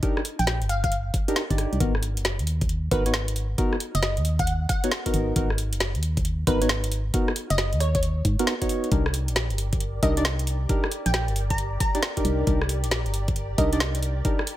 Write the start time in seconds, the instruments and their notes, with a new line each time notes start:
0.03 synth stab D4 D#4 G4 A#4, kick, closed hi-hat
0.17 cross-stick
0.25 open hi-hat
0.39 fm bass A#1, synth pluck G5, closed hi-hat
0.47 synth pluck G5, snare
0.62 fm bass G1, closed hi-hat
0.69 synth pluck F5, open hi-hat
0.84 synth pluck F5, kick, closed hi-hat
0.92 closed hi-hat
1.14 kick, open hi-hat
1.28 synth stab D4 D#4 G4 A#4, closed hi-hat
1.36 snare
1.50 fm bass G1, synth stab D4 D#4 G4 D5, kick, closed hi-hat
1.58 cross-stick, open hi-hat
1.73 fm bass C2, closed hi-hat
1.80 fm bass G#1, synth stab B3 D#4 F#4 A#4, kick, closed hi-hat
1.95 cross-stick
2.03 open hi-hat
2.17 fm bass F#1, closed hi-hat
2.25 snare
2.39 fm bass D#2, closed hi-hat
2.47 open hi-hat
2.61 kick, closed hi-hat
2.69 closed hi-hat
2.91 fm bass G#1, synth stab B3 D#4 F#4 A#4, synth pluck B4, kick, open hi-hat
3.06 synth stab B3 D#4 F#4 C#5, closed hi-hat
3.14 snare
3.28 closed hi-hat
3.36 open hi-hat
3.58 synth stab B3 D#4 F#4 A#4, kick, closed hi-hat
3.73 cross-stick
3.80 open hi-hat
3.95 fm bass F#1, synth pluck D#5, closed hi-hat
4.03 synth pluck D#5, snare
4.17 fm bass D#2, closed hi-hat
4.25 open hi-hat
4.39 synth pluck F#5, kick, closed hi-hat
4.47 closed hi-hat
4.69 synth pluck F#5, kick, open hi-hat
4.84 synth stab B3 D#4 F#4 C#5, closed hi-hat
4.92 snare
5.06 synth stab B3 D#4 F#4 A#4, kick, closed hi-hat
5.14 fm bass G#1, open hi-hat
5.36 fm bass G#1, synth stab B3 D#4 F#4 A#4, kick, closed hi-hat
5.50 cross-stick
5.58 open hi-hat
5.73 fm bass F#1, closed hi-hat
5.80 snare
5.95 fm bass D#2, closed hi-hat
6.03 open hi-hat
6.17 kick, closed hi-hat
6.25 closed hi-hat
6.47 fm bass G#1, synth stab B3 D#4 F#4 A#4, synth pluck B4, kick, open hi-hat
6.62 synth stab B3 D#4 F#4 C#5, closed hi-hat
6.69 snare
6.84 closed hi-hat
6.92 open hi-hat
7.14 synth stab B3 D#4 F#4 A#4, kick, closed hi-hat
7.28 cross-stick
7.36 open hi-hat
7.50 fm bass F#1, synth pluck D#5, closed hi-hat
7.58 synth pluck D#5, snare
7.73 fm bass D#2, closed hi-hat
7.80 synth pluck C#5, cross-stick, open hi-hat
7.95 synth pluck C#5, kick, closed hi-hat
8.03 closed hi-hat
8.25 fm bass G#2, kick, open hi-hat
8.39 synth stab B3 D#4 F#4 A#4, closed hi-hat
8.47 snare
8.62 synth stab B3 D#4 F#4 C#5, kick, closed hi-hat
8.69 open hi-hat
8.84 closed hi-hat
8.92 fm bass C2, synth stab D4 D#4 G4 A#4, string machine G4 A#4 D5, kick, closed hi-hat
9.06 cross-stick
9.14 open hi-hat
9.28 fm bass A#1, closed hi-hat
9.36 snare
9.50 fm bass G1, closed hi-hat
9.58 open hi-hat
9.73 kick, closed hi-hat
9.80 closed hi-hat
10.03 fm bass C2, synth stab D4 D#4 G4 A#4, synth pluck D#5, kick, open hi-hat
10.17 synth stab D4 D#4 G4 D5, closed hi-hat
10.25 snare
10.39 closed hi-hat
10.47 open hi-hat
10.69 synth stab D4 D#4 G4 A#4, kick, closed hi-hat
10.84 cross-stick
10.92 open hi-hat
11.06 fm bass A#1, synth pluck G5, closed hi-hat
11.14 synth pluck G5, snare
11.28 fm bass G1, closed hi-hat
11.36 open hi-hat
11.50 synth pluck A#5, kick, closed hi-hat
11.58 closed hi-hat
11.80 synth pluck A#5, kick, open hi-hat
11.95 synth stab D4 D#4 G4 D5, closed hi-hat
12.03 snare
12.17 synth stab D4 D#4 G4 A#4, kick, closed hi-hat
12.25 fm bass C2, open hi-hat
12.47 fm bass C2, synth stab D4 D#4 G4 A#4, kick, closed hi-hat
12.62 cross-stick
12.69 open hi-hat
12.84 fm bass A#1, closed hi-hat
12.91 snare
13.06 fm bass G1, closed hi-hat
13.14 open hi-hat
13.28 kick, closed hi-hat
13.36 closed hi-hat
13.58 fm bass C2, synth stab D4 D#4 G4 A#4, synth pluck D#5, kick, open hi-hat
13.73 synth stab D4 D#4 G4 D5, closed hi-hat
13.80 snare
13.95 closed hi-hat
14.03 open hi-hat
14.25 synth stab D4 D#4 G4 A#4, kick, closed hi-hat
14.39 cross-stick
14.47 open hi-hat